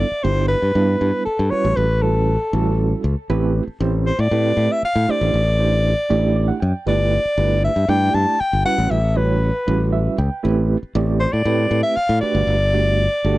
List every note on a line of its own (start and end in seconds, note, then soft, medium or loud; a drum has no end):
0.00 0.25 D5 medium
0.11 muted fingered electric bass stroke soft
0.23 0.54 G1 medium
0.23 0.56 G3 medium
0.23 0.56 B3 medium
0.23 0.56 D4 medium
0.23 0.56 E4 medium
0.23 0.56 G4 medium
0.23 0.48 C5 medium
0.48 1.21 B4 medium
0.62 0.72 G2 medium
0.75 0.95 G2 medium
0.75 1.24 G3 medium
0.75 1.24 B3 medium
0.75 1.24 D4 medium
0.75 1.24 E4 medium
0.75 1.24 B4 medium
1.01 1.11 G2 medium
1.25 1.52 A4 medium
1.25 muted fingered electric bass stroke soft
1.39 1.49 G2 medium
1.50 1.84 G3 medium
1.50 1.84 C#4 medium
1.50 1.84 E4 medium
1.50 1.84 F#4 medium
1.50 1.84 B4 medium
1.50 1.77 C#5 medium
1.50 muted fingered electric bass stroke soft
1.65 1.74 A1 medium
1.76 2.36 A1 medium
1.76 2.04 B4 medium
2.02 2.35 G3 medium
2.02 2.35 C#4 medium
2.02 2.35 E4 medium
2.02 2.35 F#4 soft
2.02 2.79 A4 medium
2.02 2.35 B4 medium
2.53 2.93 A1 medium
2.53 3.02 G3 medium
2.53 3.02 C#4 medium
2.53 3.02 E4 medium
2.53 3.02 F#4 medium
2.53 3.02 A4 medium
3.04 3.14 C#2 medium
3.30 3.59 A1 medium
3.30 3.62 A3 medium
3.30 3.62 C4 medium
3.30 3.62 E4 medium
3.30 3.62 G4 medium
3.30 3.62 B4 loud
3.68 muted fingered electric bass stroke soft
3.80 4.10 A1 medium
3.80 4.13 A3 medium
3.80 4.13 C4 medium
3.80 4.13 E4 medium
3.80 4.13 G4 medium
3.80 4.13 C5 medium
4.06 4.22 C5 medium
4.19 4.29 A2 medium
4.19 4.73 D5 medium
4.31 4.51 A2 medium
4.31 4.80 A3 medium
4.31 4.81 C4 medium
4.31 4.81 E4 medium
4.31 4.81 G4 medium
4.31 4.81 B4 medium
4.57 4.67 A2 medium
4.72 4.84 E5 medium
4.83 5.12 F5 medium
4.83 muted fingered electric bass stroke soft
4.96 5.05 A2 medium
5.08 5.41 A3 medium
5.08 5.41 D4 medium
5.08 5.41 E4 medium
5.08 5.41 G4 medium
5.08 5.41 C5 medium
5.08 6.63 D5 medium
5.08 muted fingered electric bass stroke soft
5.21 5.31 A1 medium
5.34 5.93 A1 medium
5.59 5.92 A3 medium
5.59 5.92 D4 medium
5.59 5.92 E4 medium
5.59 5.92 G4 medium
5.59 5.92 C5 medium
6.10 6.50 A1 medium
6.10 6.59 A3 medium
6.10 6.59 D4 medium
6.10 6.59 E4 medium
6.10 6.59 G4 medium
6.10 6.35 D5 medium
6.36 6.48 D5 medium
6.48 6.60 F#5 medium
6.60 6.72 F#2 medium
6.60 6.85 G5 medium
6.86 7.16 G1 medium
6.86 7.19 A3 medium
6.86 7.19 D4 medium
6.86 7.19 E4 medium
6.86 7.19 G4 medium
6.86 7.19 B4 medium
6.86 7.60 D5 medium
7.25 muted fingered electric bass stroke soft
7.38 7.67 G1 medium
7.38 7.70 A3 medium
7.38 7.70 D4 soft
7.38 7.70 E4 medium
7.38 7.70 G4 soft
7.38 7.71 B4 medium
7.64 7.91 E5 medium
7.76 7.86 G2 medium
7.89 8.08 G2 medium
7.89 8.37 A3 medium
7.89 8.38 D4 medium
7.89 8.37 E4 medium
7.89 8.38 G4 medium
7.89 8.38 D5 medium
7.89 8.16 G5 loud
8.14 8.24 G2 medium
8.14 8.42 A5 medium
8.40 8.65 G5 medium
8.40 muted fingered electric bass stroke soft
8.53 8.63 G1 medium
8.65 8.98 G3 medium
8.65 8.98 C#4 medium
8.65 8.98 E4 medium
8.65 8.98 F#4 medium
8.65 8.98 B4 medium
8.65 8.92 F#5 medium
8.65 muted fingered electric bass stroke soft
8.78 8.88 A1 medium
8.90 9.50 A1 medium
8.90 9.18 E5 medium
9.16 9.49 G3 medium
9.16 9.49 C#4 medium
9.16 9.49 E4 medium
9.16 9.49 F#4 medium
9.16 9.93 B4 medium
9.16 9.49 C#5 medium
9.67 10.07 A1 medium
9.67 10.16 G3 medium
9.67 10.16 C#4 medium
9.67 10.16 E4 medium
9.67 10.16 F#4 medium
9.67 10.16 B4 medium
9.93 10.17 E5 medium
10.18 10.28 C#2 medium
10.18 10.43 G5 medium
10.43 10.74 A1 medium
10.43 10.76 A3 medium
10.43 10.76 C4 medium
10.43 10.76 E4 medium
10.43 10.76 G4 medium
10.43 10.76 B4 medium
10.83 muted fingered electric bass stroke soft
10.95 11.25 A1 loud
10.95 11.28 A3 medium
10.95 11.28 C4 medium
10.95 11.28 E4 medium
10.95 11.28 G4 medium
10.95 11.28 D5 medium
11.20 11.34 C5 medium
11.33 11.43 A2 medium
11.33 11.82 D5 medium
11.45 11.65 A2 medium
11.45 11.94 A3 medium
11.45 11.94 C4 medium
11.45 11.95 E4 medium
11.45 11.95 G4 medium
11.45 11.95 B4 medium
11.71 11.81 A2 medium
11.83 11.98 E5 loud
11.96 12.20 F5 loud
11.96 muted fingered electric bass stroke soft
12.09 12.19 A2 medium
12.21 12.55 A3 medium
12.21 12.55 D4 medium
12.21 12.55 F#4 medium
12.21 12.55 G4 medium
12.21 12.55 B4 medium
12.21 13.38 D5 loud
12.21 muted fingered electric bass stroke soft
12.35 12.45 G1 medium
12.47 13.06 G1 medium
12.74 13.06 A3 medium
12.74 13.06 D4 medium
12.74 13.06 F#4 medium
12.74 13.06 G4 medium
12.74 13.06 D5 medium
13.24 13.38 G1 medium
13.24 13.38 A3 medium
13.24 13.38 D4 medium
13.24 13.38 F#4 medium
13.24 13.38 G4 medium
13.24 13.38 A4 medium